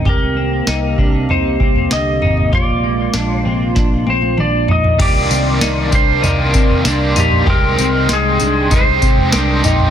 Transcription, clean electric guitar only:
X:1
M:4/4
L:1/8
Q:1/4=97
K:Cm
V:1 name="Clean electric guitar"
G C E D E C D, E | F B, D C D C D E | G C E D E C D E | G C E D E C D E |]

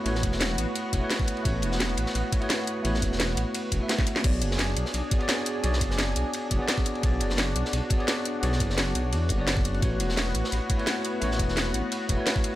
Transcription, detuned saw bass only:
X:1
M:4/4
L:1/8
Q:1/4=172
K:A
V:1 name="Detuned saw bass" clef=bass
A,,, E,,,2 A,,, z E,,, z2 | A,,, E,,,2 A,,, A,,, z3 | A,,, E,,,2 A,,, z E,,, z2 | B,,, F,,,2 B,,, B,,, z3 |
B,,, F,,,2 B,,, z F,,, z2 | B,,, F,,,2 B,,, B,,, z3 | B,,, F,,,2 B,,, E,, F,,,3 | A,,, E,,,2 A,,, A,,, z3 |
A,,, E,,,2 A,,, z E,,, z2 |]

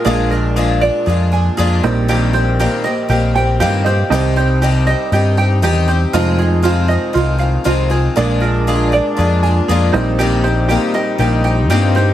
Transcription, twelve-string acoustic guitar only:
X:1
M:4/4
L:1/8
Q:1/4=118
K:Bbmix
V:1 name="Twelve-string acoustic guitar"
[B,,F,A,DF] [A,DF] [B,,F,A,DF] [A,DF] [F,A,DF] [A,DF] [B,,F,A,DF] [B,CG] | [B,,E,B,CG] [B,CG] [B,,E,B,CG] [B,CG] [E,B,CG] [B,CG] [B,,E,B,CG] [B,CG] | [C,E,CEG] [CEG] [C,E,CEG] [CEG] [E,CEG] [CEG] [C,E,CEG] [CEG] | [F,,C,E,A,CF] [E,A,CF] [F,,C,E,A,CF] [E,A,CF] [E,A,CF] [E,A,CF] [F,,C,E,A,CF] [E,A,CF] |
[B,,F,A,DF] [A,DF] [B,,F,A,DF] [A,DF] [F,A,DF] [A,DF] [B,,F,A,DF] [B,CG] | [B,,E,B,CG] [B,CG] [B,,E,B,CG] [B,CG] [E,B,CG] [B,CG] [B,,E,B,CG] [B,CG] |]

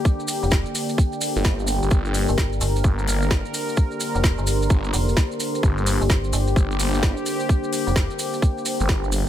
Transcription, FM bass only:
X:1
M:4/4
L:1/16
Q:"Swing 16ths" 1/4=129
K:Gm
V:1 name="FM bass" clef=bass
z3 F,,,2 z8 z3 | z3 G,,,3 G,,,2 z8 | z3 F,,,2 G,,,3 z2 F,,,2 z4 | z3 G,,,3 G,,,2 z8 |
z3 F,,,2 z8 z3 |]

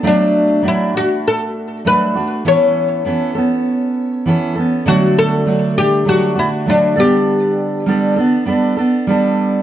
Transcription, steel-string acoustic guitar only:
X:1
M:4/4
L:1/8
Q:"Swing 16ths" 1/4=100
K:D
V:1 name="Steel-string acoustic guitar"
[F,A,DF]2 [F,A,DF] [A,DF]3 [F,A,DF] [A,DF] | [E,B,CA]2 [E,B,CA] [B,CA]3 [E,B,CA] [B,CA] | [D,F,A,DF]2 [F,A,DF] [A,D] [F,A,DF] [A,DF] [F,A,DF] [G,B,DA]- | [G,B,DA]2 [G,B,DA] [B,DA] [G,B,DA] [B,DA] [G,B,DA]2 |]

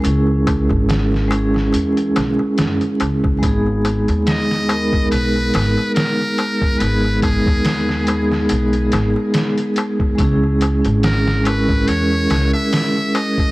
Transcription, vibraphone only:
X:1
M:4/4
L:1/8
Q:"Swing 16ths" 1/4=71
K:G#m
V:1 name="Vibraphone"
[G,CEG]3 [G,CEG]4- [G,CEG] | [G,B,DG]3 [G,B,DA] z4 | [G,B,DG]3 [G,B,DG]4- [G,B,DG] | [G,CEG]3 [G,CEA] z4 |]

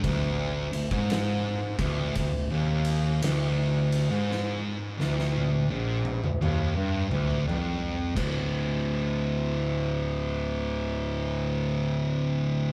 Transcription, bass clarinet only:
X:1
M:4/4
L:1/16
Q:"Swing" 1/4=56
K:Dphr
V:1 name="Bass clarinet" clef=bass
D,,2 D,, ^G,,3 D,,2 D,, E,,3 D,,3 G,,- | ^G,, z D,,3 B,,,2 D,, E,, =G,, D,,2 F,,2 D,,2- | D,,16 |]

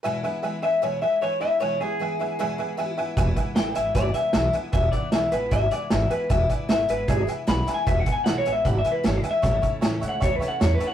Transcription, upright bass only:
X:1
M:4/4
L:1/8
Q:1/4=153
K:E
V:1 name="Upright bass" clef=bass
z8 | z8 | E,,, z G,,, G,,, G,,, z B,,, z | E,,, z B,,, A,,, G,,, z G,,, z |
E,,, z G,,, G,,, G,,, z B,,, z | E,,, z B,,, A,,, G,,, z G,,, z | A,,, z C,, C,, C,, z E,, z |]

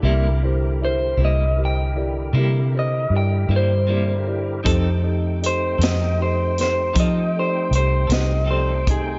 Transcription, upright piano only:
X:1
M:12/8
L:1/8
Q:3/8=52
K:F
V:1 name="Upright piano"
[EGBe] [EGBc] [EGBe] [EGBc] [EGBc] [EGBd] [EGBe] [EGBc] [EGBd] [EGBd] [EGBd] [EGBd] | [_EGAc] [EGA_e] [EGAe] [EGAc] [EGAe] [EGAc] [EGAc] [EGAd] [EGAc] [EGAc] [EGAd] [EGAe] |]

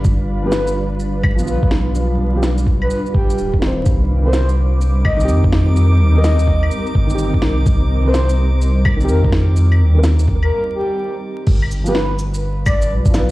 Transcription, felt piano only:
X:1
M:4/4
L:1/16
Q:"Swing 16ths" 1/4=126
K:Cm
V:1 name="Felt piano"
z3 [F,=B,G] z6 z [F,B,F]4- [F,B,F]- | [F,=B,F]3 [F,B,G] z8 z2 [E,Cc]2- | [E,Cc]3 [E,CB] z6 z [E,CG]4- [E,CG]- | [E,CG]3 [E,CB] z6 z [E,CG]4- [E,CG]- |
[E,CG]3 [E,CB] z6 z [E,CG]4- [E,CG]- | [E,CG]3 [E,CB] z12 | z3 [F,=B,G] z8 z2 [F,B,=B]2 |]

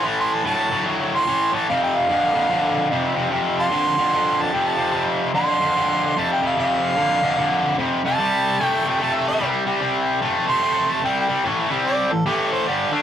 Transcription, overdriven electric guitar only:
X:1
M:4/4
L:1/8
Q:"Swing" 1/4=148
K:Flyd
V:1 name="Overdriven electric guitar" clef=bass
[A,,E,]2 [A,,^F,] [A,,F,] [A,,F,]2 [A,,E,] [A,,E,] | [F,,C,]2 [F,,D,] [F,,D,] [F,,D,]2 [F,,C,] [F,,C,] | [F,,C,]2 [F,,D,] [F,,D,] [F,,D,]2 [F,,C,] [F,,C,] | [F,,C,]2 [F,,D,] [F,,D,] [F,,D,]2 [F,,C,] [F,,C,] |
[F,,C,]2 [F,,D,] [F,,D,] [F,,D,]2 [F,,C,] [F,,C,] | [C,G,]2 [C,A,] [C,A,] [C,A,]2 [C,G,] [C,G,] | [C,G,]2 [C,A,] [C,A,] [C,A,]2 [C,G,] [C,G,] | [A,,E,A,] [C,G,C]2 [A,,E,] [A,,E,A,]2 [G,,D,G,] [D,A,D] |]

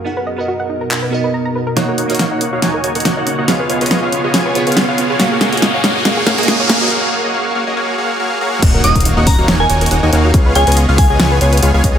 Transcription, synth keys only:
X:1
M:4/4
L:1/16
Q:"Swing 16ths" 1/4=140
K:Ebm
V:1 name="Synth keys"
[=B,^F^A^f]3 [B,FA^d]6- [B,FAd] [B,FAd]6 | [B,EGd]3 [B,EGd]12- [B,EGd] | [CFAe]3 [CFAd]6- [CFAd] [CFAd]6 | [B,GAf]3 [B,GAf]4- [B,GAf] [B,GAf]3 [B,GAf]4- [B,GAf] |
z16 | z16 | z16 |]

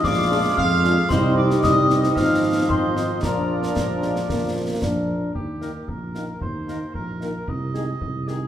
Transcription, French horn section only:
X:1
M:2/4
L:1/8
Q:1/4=113
K:Eb
V:1 name="French horn section"
z [A,DF] z [A,DF] | [G,CE]2 [G,CE]2 | [F,CE]2 [F,CE]2 | [F,B,D]4- |
[F,B,D]3 z | z [E,B,E] z [E,B,E] | z [E,B,E] z [E,B,E] | z [E,A,E] z [E,A,E] |]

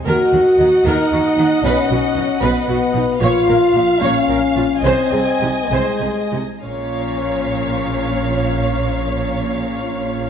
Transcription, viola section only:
X:1
M:6/8
L:1/8
Q:3/8=71
K:Bbm
V:1 name="Viola section"
B G E B G E | =B ^F ^D B F D | d B F d B F | c A E c A E |
d6- | d6 |]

